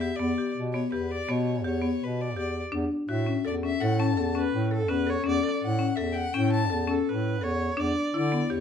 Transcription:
Already playing: E2
0.00 G4 E5
0.16 E2 B3 D5
0.38 G4
0.57 B2
0.73 B3 C#5
0.92 E2 G4 B4
1.11 D5
1.28 B2 B3 C#5
1.64 E2 G4 C#5
1.82 B3
2.01 B2 B4
2.21 D5
2.36 E2 G4 D5
2.72 E2 D4
3.09 A2 F#4 E5
3.26 C#4
3.45 E2 A4 D5
3.63 C#4 E5
3.81 A2 A4 F#5
3.99 C#4 A5
4.17 E2 A4
4.35 C#4 B4
4.53 A2
4.71 A4
4.88 E2 C#4 B4
5.07 A4 C#5
5.24 E2 C#4
5.28 D5
5.43 A4
5.62 A2 F#5
5.79 C#4
5.95 E2 A4 E5
6.12 F#5 G5
6.33 A2 C#4 G5
6.52 A5
6.70 E2 A4
6.87 C#4 A4
7.08 A2 B4
7.41 E2 A4 C#5
7.71 C#5
7.77 E2 D4 D5
8.14 D3 E4 D5
8.32 B3
8.50 E2 G4 C#5

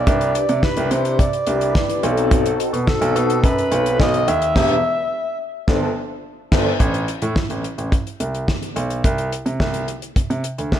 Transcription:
Already playing: D5
0.07 C2 D4 E4 G4 B4, kick, closed hi-hat
0.21 closed hi-hat
0.35 closed hi-hat
0.49 C3, closed hi-hat
0.63 D4 E4 G4 B4, kick, snare
0.77 C2, closed hi-hat
0.91 C3 C5, closed hi-hat
1.05 closed hi-hat
1.19 D5, kick, closed hi-hat
1.33 closed hi-hat
1.47 C2 D4 E4 G4 B4, closed hi-hat
1.61 closed hi-hat
1.75 kick, snare
1.90 closed hi-hat
2.03 B1 C4 D#4 F#4 A4, closed hi-hat
2.17 closed hi-hat
2.31 kick, closed hi-hat
2.46 closed hi-hat
2.60 closed hi-hat
2.73 B2, closed hi-hat
2.87 C4 D#4 F#4 A4, kick, snare
3.01 B1, closed hi-hat
3.15 B2, closed hi-hat
3.30 closed hi-hat
3.44 F#2 B4, kick, closed hi-hat
3.58 closed hi-hat
3.71 B1 C4 D#4 F#4 A4, closed hi-hat
3.86 closed hi-hat
4.00 B1 D#5, kick, snare
4.14 closed hi-hat
4.28 D#2 E5, closed hi-hat
4.42 closed hi-hat
4.55 E1 D4 E4 G4 B4, kick, snare, crash
5.67 G1 D4 F4 A4 C5, kick, snare
6.51 G1 D4 F4 A4 C5, kick, snare, crash
6.80 A1, kick, closed hi-hat
6.94 closed hi-hat
7.08 closed hi-hat
7.22 A2, closed hi-hat
7.36 kick, snare
7.50 A1, closed hi-hat
7.64 closed hi-hat
7.78 A1, closed hi-hat
7.92 kick, closed hi-hat
8.07 closed hi-hat
8.20 C2, closed hi-hat
8.35 closed hi-hat
8.48 kick, snare
8.62 closed hi-hat
8.76 B1, closed hi-hat
8.90 closed hi-hat
9.04 C2, kick, closed hi-hat
9.18 closed hi-hat
9.32 closed hi-hat
9.46 C3, closed hi-hat
9.60 C2, kick, snare
9.74 closed hi-hat
9.88 closed hi-hat
10.02 closed hi-hat
10.16 C3, kick, closed hi-hat
10.30 C3, closed hi-hat
10.44 closed hi-hat
10.58 D2, closed hi-hat
10.72 C2, kick, snare

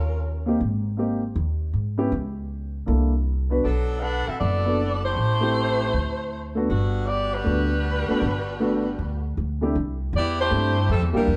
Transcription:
Already playing: D#2 C#4 F4 A#4
0.46 A#3 C4 D#4 G4
0.61 G#1
0.97 A#3 C4 D#4 G4
1.36 D#2
1.74 G#2
1.98 B3 C#4 E4 G4
2.12 C#2
2.86 C2 A#3 D4 E4 A4
3.50 B3 D4 F#4 B4
3.64 B1 F#3 B3 D4 A4
4.01 D4 A4 B4 F#5
4.27 C4 F#4 A4 E5, muted upright bass stroke
4.40 F#1 B3 F#4 A4 D5
4.65 B3 D4 F#4 A4
5.04 A3 E4 G4 C5
5.16 A1
5.40 A3 C4 E4 G4
5.94 D2
6.55 A3 B3 D4 F#4
6.70 G1 D3 G3 B3 F#4
7.06 B3 F#4 G4 D5
7.33 G3 D4 F#4 B4
7.44 D2 A3 B3 D4 F#4
8.08 A3 B3 D4 F#4, muted upright bass stroke
8.22 G1
8.60 A3 B3 D4 F#4
8.99 D2
9.37 D2
9.61 C3 A3 D4 E4 G4
9.75 C2
10.13 E2 B3 E4 G4 D5
10.40 A3 E4 G4 C5
10.50 G2 A3 C4 D4 E4 G4
10.89 F2 G3 C4 E4 A4
11.02 E2
11.13 C2 G3 A#3 D4 E4 G4 A#4
11.27 E2

